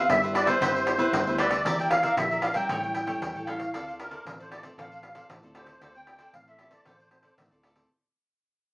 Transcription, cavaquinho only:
0.09 muted cavaquinho stroke soft
0.22 0.34 B4 soft
0.22 0.33 C5 soft
0.22 0.34 E5 soft
0.34 0.47 G4 soft
0.34 0.46 B4 medium
0.34 0.46 C5 medium
0.34 0.45 E5 medium
0.46 0.59 B4 medium
0.46 0.60 C5 medium
0.46 0.59 E5 medium
0.61 0.73 G4 medium
0.61 0.73 B4 medium
0.61 0.73 C5 medium
0.61 0.74 E5 medium
0.75 0.86 B4 soft
0.75 0.86 C5 soft
0.75 0.86 E5 soft
0.87 muted cavaquinho stroke soft
0.98 1.24 B4 medium
0.98 1.25 C5 medium
0.98 1.24 E5 medium
1.27 1.38 B4 soft
1.27 1.38 C5 soft
1.27 1.39 E5 medium
1.39 1.51 G4 medium
1.39 1.50 B4 medium
1.39 1.51 C5 medium
1.39 1.49 E5 medium
1.50 1.64 B4 soft
1.50 1.64 C5 soft
1.50 1.63 E5 medium
1.65 1.77 G4 medium
1.65 1.77 A#4 medium
1.65 1.78 D5 medium
1.65 1.78 E5 medium
1.79 2.03 A#4 soft
1.79 2.02 D5 soft
1.79 2.02 E5 soft
2.03 2.16 A#4 medium
2.03 2.15 D5 medium
2.03 2.16 E5 medium
2.18 muted cavaquinho stroke soft
2.31 2.42 A#4 soft
2.31 2.43 D5 soft
2.31 2.42 E5 soft
2.42 2.55 G4 soft
2.42 2.55 A#4 soft
2.42 2.53 D5 medium
2.42 2.54 E5 medium
2.54 2.68 A#4 medium
2.54 2.67 D5 medium
2.54 2.68 E5 medium
2.69 2.81 E4 medium
2.69 2.82 A4 medium
2.69 2.82 C#5 medium
2.69 2.82 G5 medium
2.83 2.94 A4 soft
2.83 2.94 C#5 soft
2.83 2.95 G5 soft
2.95 muted cavaquinho stroke soft
3.07 3.33 A4 medium
3.07 3.33 C#5 medium
3.07 3.32 G5 medium
3.35 3.46 A4 soft
3.35 3.46 C#5 soft
3.35 3.47 G5 medium
3.47 3.59 E4 medium
3.47 3.59 A4 medium
3.47 3.58 C#5 medium
3.47 3.58 G5 medium
3.59 3.72 A4 soft
3.59 3.72 C#5 soft
3.59 3.71 G5 medium
3.74 3.85 F4 medium
3.74 3.86 A4 medium
3.74 3.86 C5 medium
3.74 3.86 D5 medium
3.88 4.11 A4 soft
3.88 4.10 C5 soft
3.88 4.09 D5 soft
4.11 4.24 A4 medium
4.11 4.24 C5 medium
4.11 4.23 D5 medium
4.26 muted cavaquinho stroke soft
4.40 4.50 A4 soft
4.40 4.50 C5 soft
4.40 4.51 D5 medium
4.51 4.63 F4 soft
4.51 4.63 A4 medium
4.51 4.62 C5 medium
4.51 4.61 D5 medium
4.63 4.76 A4 medium
4.63 4.76 C5 medium
4.63 4.75 D5 medium
4.78 4.90 F4 medium
4.78 4.90 A4 medium
4.78 4.90 C5 medium
4.78 4.90 D5 medium
4.91 5.02 A4 soft
4.91 5.02 C5 soft
4.91 5.02 D5 soft
5.03 muted cavaquinho stroke soft
5.15 5.41 A4 medium
5.15 5.41 C5 medium
5.15 5.41 D5 medium
5.43 5.54 A4 soft
5.43 5.55 C5 medium
5.43 5.55 D5 soft
5.55 5.67 F4 medium
5.55 5.67 A4 medium
5.55 5.66 C5 medium
5.55 5.65 D5 medium
5.66 5.80 A4 soft
5.66 5.80 C5 soft
5.66 5.79 D5 soft
5.82 5.94 F4 medium
5.82 5.94 A4 medium
5.82 5.94 C5 medium
5.82 5.94 D5 medium
5.96 6.19 A4 soft
5.96 6.18 C5 soft
6.19 6.32 A4 medium
6.19 6.32 C5 medium
6.19 6.32 D5 medium
6.34 muted cavaquinho stroke soft
6.47 6.58 A4 soft
6.47 6.58 C5 soft
6.47 6.59 D5 medium
6.59 6.71 F4 medium
6.59 6.71 A4 medium
6.59 6.70 C5 medium
6.59 6.69 D5 medium
6.70 6.84 A4 medium
6.70 6.84 C5 medium
6.70 6.84 D5 medium
6.85 6.98 F4 medium
6.85 6.98 A4 medium
6.85 6.98 C5 medium
6.85 6.98 D5 medium
6.99 7.10 A4 soft
6.99 7.10 C5 soft
6.99 7.10 D5 medium
7.11 muted cavaquinho stroke soft
7.23 7.50 A4 medium
7.23 7.49 C5 medium
7.23 7.49 D5 medium
7.51 7.62 A4 soft
7.51 7.63 C5 soft
7.51 7.63 D5 medium
7.63 7.75 F4 medium
7.63 7.76 A4 medium
7.63 7.75 C5 medium
7.63 7.74 D5 medium
7.75 7.89 A4 soft
7.75 7.89 C5 soft
7.75 7.88 D5 soft

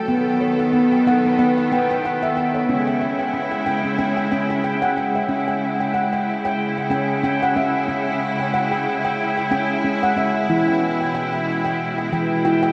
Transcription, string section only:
0.00 2.65 A4 medium
0.08 2.66 D#3 medium
0.08 2.66 B3 medium
2.70 5.27 C#3 medium
2.70 5.27 G#3 medium
2.70 5.27 E4 medium
5.29 10.46 C#3 medium
5.29 12.72 G#3 medium
5.29 12.72 E4 medium
10.49 12.72 B2 medium

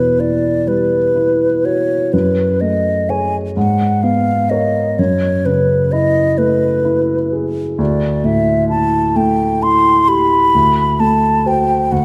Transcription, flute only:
0.00 0.22 B4 soft
0.20 0.69 D5 soft
0.68 1.67 B4 soft
1.65 2.15 C#5 medium
2.13 2.62 B4 soft
2.61 3.11 D#5 soft
3.10 3.36 G#5 medium
3.57 4.04 F#5 medium
4.03 4.51 F5 medium
4.50 5.00 D#5 medium
4.99 5.47 C#5 medium
5.46 5.93 B4 medium
5.92 6.39 D#5 medium
6.38 7.33 B4 medium
7.79 8.27 D5 medium
8.25 8.69 E5 medium
8.69 9.18 A5 medium
9.16 9.64 G5 medium
9.63 10.10 C6 medium
10.08 11.01 B5 medium
11.00 11.49 A5 medium
11.47 11.93 G5 medium
11.92 12.05 F#5 medium

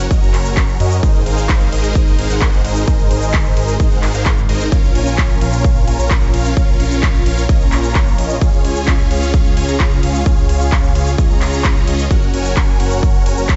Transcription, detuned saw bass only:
0.11 0.20 F#1 loud
0.22 0.78 F#1 loud
0.80 1.01 F#2 loud
1.03 1.24 G#1 loud
1.26 1.70 G#1 loud
1.72 2.16 G#1 loud
2.18 2.28 G#1 loud
2.30 2.62 G#1 loud
2.64 2.85 G#1 loud
2.88 3.08 G#1 loud
3.10 3.54 G#1 loud
3.57 3.78 G#1 loud
3.80 3.89 G#1 loud
3.92 4.12 G#1 loud
4.15 4.47 G#1 loud
4.49 4.70 G#1 loud
4.72 4.93 A#1 loud
4.95 5.39 A#1 loud
5.41 5.85 A#1 loud
5.87 5.97 A#1 loud
5.99 6.31 A#1 loud
6.34 6.54 A#1 loud
6.57 6.78 A#1 loud
6.80 7.24 A#1 loud
7.26 7.47 A#1 loud
7.49 7.58 A#1 loud
7.61 8.16 A#1 loud
8.18 8.39 A#1 loud
8.42 8.62 C#2 loud
8.65 9.08 C#2 loud
9.11 9.54 C#2 loud
9.57 9.66 C#2 loud
9.68 10.01 C#2 loud
10.03 10.24 C#2 loud
10.26 10.47 C#2 loud
10.49 10.93 C#2 loud
10.95 11.16 C#2 loud
11.18 11.28 C#2 loud
11.30 11.85 C#2 loud
11.88 12.08 C#2 medium
12.11 12.31 F#1 loud
12.34 12.78 F#1 loud
12.80 13.24 F#1 loud
13.26 13.35 F#1 loud
13.38 13.56 F#1 loud

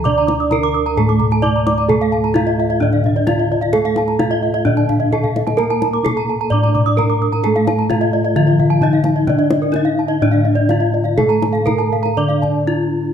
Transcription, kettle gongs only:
0.00 0.96 D2 medium
0.05 1.40 D5 medium
0.52 0.60 D#4 soft
0.97 2.32 A2 medium
1.43 1.51 D#4 soft
1.89 3.24 A4 medium
2.35 2.43 D#4 soft
2.81 4.16 A2 soft
3.27 3.35 D#4 soft
3.73 5.08 A4 medium
4.19 4.27 D#4 soft
4.65 6.00 A#2 medium
5.11 5.19 D#4 soft
5.57 6.93 A#4 medium
6.04 6.12 D#4 soft
6.51 7.85 A2 medium
6.98 7.06 D#4 soft
7.44 8.78 A4 soft
7.90 7.98 D#4 soft
8.36 9.71 D3 medium
8.82 8.90 D#4 soft
9.27 10.65 D4 medium
9.74 9.82 D#4 soft
10.21 11.63 A2 medium
10.69 10.77 D#4 soft
11.18 12.64 A4 medium
11.68 11.76 D#4 soft
12.17 13.13 D3 soft
12.67 12.75 D#4 soft

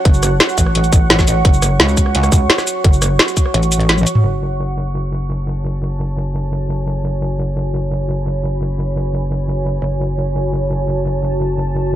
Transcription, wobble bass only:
0.05 0.39 F#1 loud
0.58 1.43 A1 loud
1.45 1.78 F#1 loud
1.80 2.31 C#2 loud
2.32 2.48 C#2 loud
2.84 3.18 F#1 loud
3.54 4.05 A1 loud
4.24 9.80 F#1 medium
9.82 11.96 F#1 medium

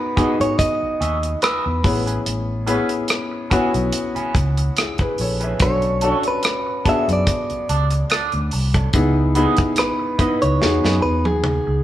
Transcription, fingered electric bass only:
0.18 muted fingered electric bass stroke soft
0.40 0.55 G#2 medium
0.83 muted fingered electric bass stroke soft
1.01 1.34 D#2 medium
1.66 1.81 E2 medium
1.85 2.18 A1 medium
2.26 2.77 A1 medium
3.51 muted fingered electric bass stroke soft
3.74 3.90 B1 medium
4.16 muted fingered electric bass stroke soft
4.35 4.68 C#2 medium
5.20 5.52 A#1 medium
5.60 6.11 B1 medium
6.86 muted fingered electric bass stroke soft
7.08 7.23 F#2 medium
7.51 muted fingered electric bass stroke soft
7.69 8.02 C#2 medium
8.33 8.49 D2 medium
8.54 8.86 C2 medium
8.94 9.45 C#2 medium
10.19 muted fingered electric bass stroke soft
10.43 10.58 C#2 medium
10.63 10.80 E2 medium
10.84 10.99 F#2 medium
11.04 11.26 E2 medium
11.26 11.59 D#2 medium
11.67 11.82 C#2 medium

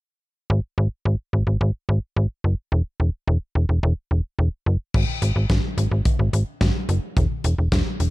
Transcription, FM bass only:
0.50 0.60 G#1 loud
0.78 0.88 G#1 loud
1.05 1.16 G#1 loud
1.33 1.44 G#1 medium
1.47 1.57 G#1 medium
1.61 1.71 G#1 loud
1.89 1.99 G#1 loud
2.16 2.27 G#1 loud
2.44 2.55 F#1 medium
2.72 2.82 E1 loud
3.00 3.10 E1 medium
3.27 3.38 E1 loud
3.55 3.66 E1 loud
3.69 3.80 E1 medium
3.83 3.94 E1 loud
4.11 4.21 E1 medium
4.39 4.49 E1 loud
4.66 4.77 F#1 loud
4.94 5.05 G#1 loud
5.22 5.33 G#1 medium
5.36 5.46 G#1 medium
5.50 5.60 G#1 medium
5.78 5.88 G#1 medium
5.91 6.02 G#1 medium
6.19 6.30 G#1 medium
6.33 6.44 G#1 loud
6.61 6.72 G#1 medium
6.89 6.99 F#1 medium
7.17 7.27 E1 loud
7.44 7.55 E1 loud
7.58 7.69 E1 medium
7.72 7.82 E1 loud
8.00 8.10 E1 medium

